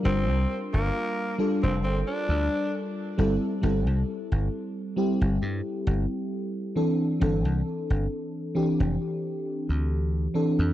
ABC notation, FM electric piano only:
X:1
M:4/4
L:1/8
Q:"Swing 16ths" 1/4=67
K:F
V:1 name="FM electric piano"
[G,DFB]3 [G,DFA] z3 [G,CEA] | [G,CEA]3 [G,CEG] z3 [E,CDA] | [E,CDA]3 [E,CDG] z3 [E,CDA] |]